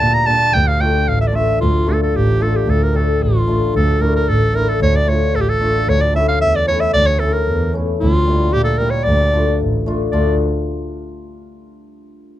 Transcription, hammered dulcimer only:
Already playing: G3
0.26 G3 A#3 D4
0.79 A3 D4 F4
1.32 A3 D4 F4
1.87 A3 D4 F4
2.39 A3 D4 F4
2.93 A3 D4 G4
3.47 A3 D4 F4
4.00 A3 D4 E4
4.53 A3 D4 E4
5.06 A3 D4 F4
5.60 A3 D4 F4
6.13 A3 C#4 E4
6.66 A3 C#4 E4
7.20 A3 C#4 E4
7.73 A3 C#4 E4
8.27 G3 A#3 E4
8.80 G3 A#3 E4
9.33 A3 D4 F4
9.86 A3 D4 F4
10.13 A3 D4 F4

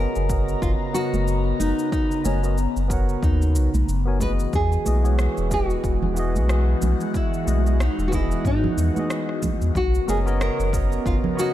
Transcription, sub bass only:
0.16 F#1
0.62 F#1
1.13 F#1
1.60 F#1
2.25 F#1
2.76 F#1
3.23 D#2
3.55 B1
3.74 B1
3.88 F#1
4.53 E2
4.86 B1
5.38 E1
5.84 E1
6.36 B1
6.82 B1
7.47 B1
7.98 E1
8.45 G#2
8.77 E2
9.61 E2
9.75 B1
10.08 F#1
10.59 F#1
11.06 F#1

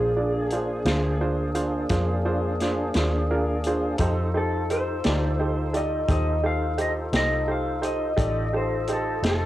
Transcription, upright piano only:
0.16 D4 F4 G#4 D5
0.52 D4 F4 G#4 C5
0.86 D4 F4 G#4 C5
1.21 D4 F4 G#4 C5
1.55 D4 F4 G#4 C5
1.90 D4 F4 G#4 C5
2.25 D4 F4 G#4 C5
2.61 D4 F4 G#4 C5
2.95 D4 F4 G#4 C5
3.31 D4 F4 G#4 A#4
3.66 D4 F4 G#4 C5
4.00 D#4 G4 A4 C5
4.34 D#4 G4 A4 C5
4.70 D#4 G4 A4 C5
5.04 D#4 G4 A4 D5
5.39 D#4 G4 A4 C5
5.73 D#4 G4 A4 D5
6.08 D#4 G4 A4 C5
6.43 D#4 G4 A4 C5
6.78 D#4 G4 A4 C5
7.13 D#4 G4 A4 C5
7.47 D#4 G4 A4 C5
7.81 D#4 G4 A4 C5
8.16 D#4 G4 A4 D5
8.53 D#4 G4 A4 C5
8.88 D#4 G4 A4 C5
9.23 D#4 G4 A4 C5

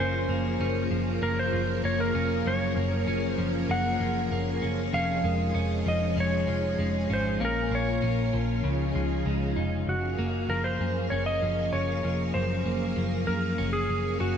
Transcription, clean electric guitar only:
Already playing: F3 A#3
0.00 C#4
0.29 A#3
0.60 C#4
0.91 F3
1.22 A#3
1.53 F3
1.84 A#3
2.15 C#4
2.46 F#2 C#4
2.77 A#3
3.07 C#4
3.38 F3
3.69 A#3
4.00 F3
4.32 A#3
4.62 C#4
4.93 F2 C#4
5.24 G#3
5.55 C#4
5.86 F3
6.16 G#3
6.47 F3
6.78 G#3
7.10 C#4
7.40 A#2 C#4
7.71 A#3
8.02 C#4
8.33 F3
8.64 C#3
8.95 F3
9.26 G#3
9.56 D#4
10.19 A#3
10.49 F3
10.81 A#3
11.12 C#4
11.42 F3
11.73 C#4
12.04 F3
12.34 F#2
12.66 A#3
12.96 F3
13.27 A#3
13.58 C#4
14.20 C#4

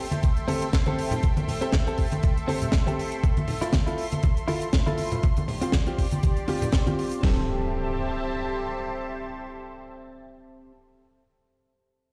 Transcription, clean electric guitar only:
0.23 muted clean electric guitar stroke
0.48 C4 G4 A4
0.86 C4 G4 A4
1.61 C4 G4 A4
1.86 C4 G4 A4
2.23 muted clean electric guitar stroke
2.48 C4 G4 A4
2.87 C4 G4 A4
3.61 E4 F4 A4
3.87 E4 F4 A4
4.23 muted clean electric guitar stroke
4.48 E4 F4 A4
4.86 E4 F4 A4
5.61 C4 F4 G4
5.87 C4 F4 G4
6.23 muted clean electric guitar stroke
6.48 C4 F4 G4
6.86 C4 F4 G4
7.20 C4 G4
7.26 A4

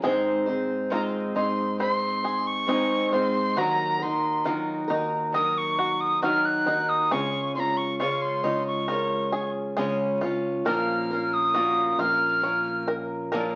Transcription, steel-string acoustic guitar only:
0.02 G#2 D#3 G#3 C4 D#4 C5
0.46 G#3 C4 D#4 C5
0.90 G#2 D#3 G#3 C4 D#4 C5
1.35 G#3 C4 D#4 C5
1.78 G#3 C4 D#4 C5
2.66 G#2 D#3 G#3 C4 D#4
3.11 G#3 C4 D#4 C5
3.56 D#3 F#3 D#4 F#4 A#4
3.99 D#4 F#4 A#4
4.44 D#3 F#3 D#4 F#4 A#4
4.88 D#4 F#4 A#4
5.32 F#3 D#4 F#4 A#4
6.22 D#3 F#3 D#4 F#4 A#4
6.66 D#4 F#4 A#4
7.11 C#3 G#3 C#4 F4 C#5
7.55 C#4 F4 C#5
7.99 C#3 G#3 C#4 F4 C#5
8.44 C#4 F4 C#5
8.88 G#3 C#4 F4 C#5
9.77 C#3 G#3 C#4 F4 C#5
10.21 C#4 F4 C#5
10.65 A#2 F3 A#3 C#4 F4 A#4
11.10 A#3 C#4 F4 A#4
11.54 A#2 A#3 C#4 F4 A#4
11.99 A#3 C#4 F4 A#4
12.42 A#3 C#4 F4 A#4
13.32 A#2 F3 A#3 C#4 F4 A#4

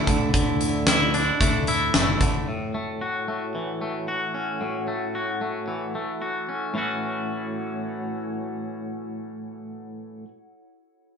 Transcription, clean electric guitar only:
Already playing: A3 D4 E4
0.08 D3
0.34 D3
0.88 E4
1.14 D4
1.41 A3
1.68 E4
1.95 A3
2.22 D3
2.48 A2
2.74 A3
3.01 F#4
3.28 A3
3.55 E3
3.81 A3
4.08 F#4
4.34 C#4
4.61 A2
4.88 A3
5.15 F#4
5.41 A3
5.68 E3
5.95 A3
6.22 F#4
6.49 C#4
6.74 A2 E3 A3 C#4
6.78 F#4

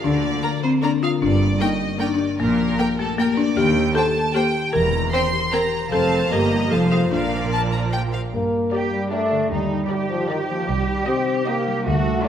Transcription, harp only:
Already playing: F3 D4 F4 A#4
0.03 D3
0.24 A#3
0.43 A#4
0.63 F4
0.83 A#4
1.03 F4
1.22 G2
1.42 A#3
1.61 A#4
1.81 G4
2.00 A#4
2.20 G4
2.39 A#2
2.59 A#3
2.79 A#4
2.99 G4
3.19 A#4
3.38 G4
3.58 D#3
3.77 A#3
4.16 G4
4.35 C5
4.55 G4
4.74 E3
4.94 C4
5.33 G4
5.72 G4
5.91 F3
6.11 F4 C5
6.31 G2
6.51 D#4 D#5
6.71 F2
6.91 F4 C5
7.11 A#2
7.32 D4
7.73 F4
7.93 A#4
8.13 F4
8.33 G2
8.52 D4
8.72 G4
8.92 D5
9.11 G4
9.31 D3
9.51 D#3
9.70 D#4
9.90 G4
10.10 D5
10.29 G4
10.49 A#3
10.69 C3
10.88 D#4
11.28 C5
11.47 G4
11.67 G3
11.87 D3
12.06 D4

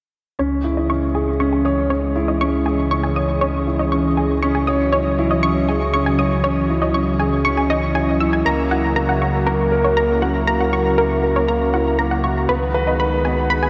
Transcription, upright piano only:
0.39 C#4
0.64 E4
0.89 C#4
1.15 G#4
1.40 C#4
1.65 C#5
1.90 C#4
2.16 E4
2.41 C#4
2.66 G#4
2.92 C#4
3.17 C#5
3.42 C#4
3.67 E4
3.92 C#4
4.18 G#4
4.43 C#4
4.68 C#5
4.93 C#4
5.19 E4
5.44 C#4
5.69 G#4
5.94 C#4
6.19 C#5
6.44 C#4
6.69 E4
6.95 C#4
7.20 G#4
7.45 C#4
7.70 C#5
7.95 E4
8.20 E4
8.46 A#3
8.71 E4
8.96 A#3
9.21 F#4
9.46 A#3
9.72 A#4
9.97 A#3
10.22 A#3
10.47 A#3
10.73 F#4
10.98 A#3
11.23 A#4
11.48 A#3
11.74 E4
11.99 A#3
12.24 F#4
12.49 B3
12.74 B4
13.00 B3
13.25 B3
13.50 B3

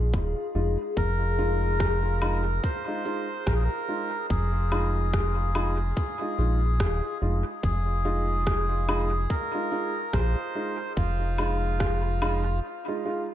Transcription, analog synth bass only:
Already playing: A#1
0.14 D#1
0.55 F1
0.97 F1
3.47 A#1
4.30 F1
6.39 A#1
6.80 D#1
7.22 F1
7.63 F1
10.14 A#1
10.97 F1

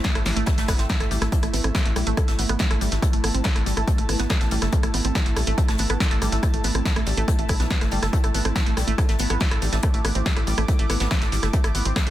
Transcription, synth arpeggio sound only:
0.04 A3
0.15 A3
0.26 G3
0.36 A3
0.47 A3
0.58 A3
0.68 B3
0.79 C4
0.90 A3
1.00 A4
1.11 G3
1.22 A3
1.32 A3
1.43 A3
1.53 B3
1.64 C4
1.75 A3
1.86 A3
1.96 G3
2.07 A3
2.17 A3
2.28 A3
2.39 B3
2.50 B3
2.60 A3
2.71 A4
2.81 G3
2.92 A3
3.02 A3
3.13 A3
3.24 B3
3.34 C4
3.45 A3
3.56 A3
3.66 G3
3.77 A3
3.87 A3
3.98 A3
4.09 B3
4.20 B3
4.30 A3
4.41 A4
4.52 G3
4.62 A3
4.73 A3
4.83 A3
4.94 B3
5.05 C4
5.15 A3
5.26 A3
5.37 G3
5.47 A3
5.58 A3
5.69 A3
5.79 B3
5.90 B3
6.00 A3
6.11 A4
6.22 G3
6.32 A3
6.43 A3
6.54 A3
6.64 B3
6.75 C4
6.86 A3
6.96 A3
7.07 G3
7.17 A3
7.28 A3
7.39 A3
7.49 E4
7.60 B3
7.71 B3
7.81 A3
7.92 G3
8.02 A4
8.13 A3
8.24 A3
8.34 B3
8.45 C4
8.55 A3
8.66 A3
8.77 G3
8.87 A3
8.98 A3
9.09 A3
9.19 B3
9.30 B3
9.41 A3
9.51 A4
9.62 G3
9.73 A3
9.83 A3
9.94 A3
10.04 B3
10.15 C4
10.26 A3
10.36 A3
10.47 G3
10.58 A3
10.68 A3
10.79 A3
10.90 B3
11.00 B3
11.11 A3
11.22 A4
11.32 G3
11.43 A3
11.54 A3
11.64 A3
11.75 B3
11.85 C4
11.96 A3
12.07 A3

